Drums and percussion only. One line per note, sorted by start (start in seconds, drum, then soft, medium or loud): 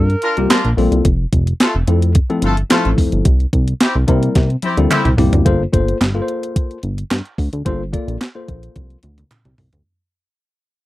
0.10 closed hi-hat soft
0.22 closed hi-hat medium
0.37 closed hi-hat medium
0.50 snare loud
0.50 clap loud
0.50 closed hi-hat medium
0.65 closed hi-hat soft
0.78 open hi-hat medium
0.92 closed hi-hat medium
1.05 kick loud
1.05 closed hi-hat medium
1.33 kick medium
1.33 closed hi-hat medium
1.47 closed hi-hat medium
1.60 snare loud
1.60 clap medium
1.60 closed hi-hat loud
1.87 closed hi-hat medium
2.02 closed hi-hat medium
2.15 kick loud
2.15 closed hi-hat medium
2.30 closed hi-hat soft
2.42 closed hi-hat medium
2.57 closed hi-hat medium
2.70 snare loud
2.70 clap loud
2.70 closed hi-hat loud
2.85 closed hi-hat soft
2.98 kick medium
2.98 open hi-hat medium
3.12 closed hi-hat medium
3.25 kick loud
3.25 closed hi-hat medium
3.40 closed hi-hat soft
3.53 kick medium
3.53 closed hi-hat medium
3.68 closed hi-hat medium
3.80 snare loud
3.80 clap medium
3.80 closed hi-hat medium
4.08 kick medium
4.08 closed hi-hat medium
4.23 closed hi-hat medium
4.35 kick loud
4.35 snare medium
4.35 closed hi-hat medium
4.50 closed hi-hat soft
4.62 closed hi-hat medium
4.62 high tom medium
4.77 closed hi-hat medium
4.91 clap loud
4.91 closed hi-hat loud
4.91 mid tom loud
5.05 closed hi-hat soft
5.05 mid tom medium
5.18 floor tom loud
5.18 open hi-hat medium
5.33 closed hi-hat medium
5.33 floor tom loud
5.46 kick loud
5.46 closed hi-hat medium
5.73 kick medium
5.73 closed hi-hat medium
5.88 closed hi-hat medium
6.01 snare loud
6.01 clap medium
6.01 closed hi-hat medium
6.28 closed hi-hat medium
6.43 closed hi-hat medium
6.56 kick loud
6.56 closed hi-hat medium
6.71 closed hi-hat soft
6.83 closed hi-hat medium
6.98 closed hi-hat medium
7.11 snare loud
7.11 clap loud
7.11 closed hi-hat medium
7.25 closed hi-hat soft
7.38 kick medium
7.38 open hi-hat medium
7.53 closed hi-hat medium
7.66 kick loud
7.66 closed hi-hat medium
7.93 kick loud
7.93 closed hi-hat medium
8.08 closed hi-hat medium
8.21 snare loud
8.21 clap medium
8.21 closed hi-hat loud
8.48 kick medium
8.48 closed hi-hat medium
8.63 closed hi-hat medium
8.76 kick loud
8.76 closed hi-hat medium
8.76 high tom medium
8.90 closed hi-hat soft
9.03 closed hi-hat medium
9.03 mid tom medium
9.18 closed hi-hat medium
9.18 mid tom medium
9.31 clap medium
9.31 closed hi-hat loud
9.31 mid tom medium
9.45 closed hi-hat soft
9.45 mid tom medium
9.58 floor tom loud
9.58 open hi-hat medium
9.73 closed hi-hat medium
9.73 floor tom medium